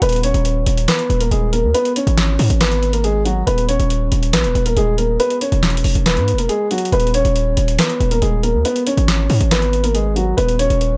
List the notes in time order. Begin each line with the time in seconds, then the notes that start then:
0.02 D#1 B3 B4, closed hi-hat
0.09 closed hi-hat
0.12 closed hi-hat
0.16 closed hi-hat
0.23 C#4 C#5, closed hi-hat
0.34 D#1, closed hi-hat
0.45 closed hi-hat
0.66 D#1, closed hi-hat
0.77 closed hi-hat
0.88 B3 B4, snare, closed hi-hat
0.99 closed hi-hat
1.10 D#1, closed hi-hat
1.21 A#3 A#4, closed hi-hat
1.31 D#1 G#3 G#4, closed hi-hat
1.53 A#3 A#4, closed hi-hat
1.64 D#2
1.74 B3 B4, closed hi-hat
1.85 closed hi-hat
1.96 C#4 C#5, closed hi-hat
2.07 G#1, closed hi-hat
2.18 snare, closed hi-hat
2.39 G#2, open hi-hat
2.50 G#1, closed hi-hat
2.61 B3 B4, snare, closed hi-hat
2.72 closed hi-hat
2.83 closed hi-hat
2.93 A#3 A#4, closed hi-hat
3.04 G#3 G#4, closed hi-hat
3.25 F#3 F#4, closed hi-hat
3.47 D#1 B3 B4, closed hi-hat
3.58 closed hi-hat
3.68 C#4 C#5, closed hi-hat
3.79 D#1, closed hi-hat
3.90 closed hi-hat
4.12 D#1, closed hi-hat
4.23 closed hi-hat
4.33 A#1 B3 B4, snare, closed hi-hat
4.44 D#1, closed hi-hat
4.55 D#1, closed hi-hat
4.66 A#3 A#4, closed hi-hat
4.77 D#1 G#3 G#4, closed hi-hat
4.98 A#3 A#4, closed hi-hat
5.20 B3 B4, closed hi-hat
5.30 closed hi-hat
5.41 C#4 C#5, closed hi-hat
5.52 E1, closed hi-hat
5.63 snare, closed hi-hat
5.70 closed hi-hat
5.77 closed hi-hat
5.84 E1, open hi-hat
5.95 E1, closed hi-hat
6.06 B3 B4, snare, closed hi-hat
6.17 G#2, closed hi-hat
6.28 closed hi-hat
6.33 E1
6.38 A#3 A#4, closed hi-hat
6.49 G#3 G#4, closed hi-hat
6.71 F#3 F#4, closed hi-hat
6.78 closed hi-hat
6.85 closed hi-hat
6.92 D#1 B3 B4, closed hi-hat
7.00 closed hi-hat
7.07 closed hi-hat
7.14 C#4 C#5, closed hi-hat
7.25 D#1, closed hi-hat
7.36 closed hi-hat
7.57 D#1, closed hi-hat
7.68 closed hi-hat
7.79 B3 B4, snare, closed hi-hat
7.89 closed hi-hat
8.00 D#1, closed hi-hat
8.11 A#3 A#4, closed hi-hat
8.22 D#1 G#3 G#4, closed hi-hat
8.43 A#3 A#4, closed hi-hat
8.54 D#2
8.65 B3 B4, closed hi-hat
8.76 closed hi-hat
8.87 C#4 C#5, closed hi-hat
8.97 G#1, closed hi-hat
9.08 snare, closed hi-hat
9.30 G#2, open hi-hat
9.41 G#1, closed hi-hat
9.51 B3 B4, snare, closed hi-hat
9.62 closed hi-hat
9.73 closed hi-hat
9.84 A#3 A#4, closed hi-hat
9.94 G#3 G#4, closed hi-hat
10.16 F#3 F#4, closed hi-hat
10.37 D#1 B3 B4, closed hi-hat
10.48 closed hi-hat
10.59 C#4 C#5, closed hi-hat
10.70 D#1, closed hi-hat
10.81 closed hi-hat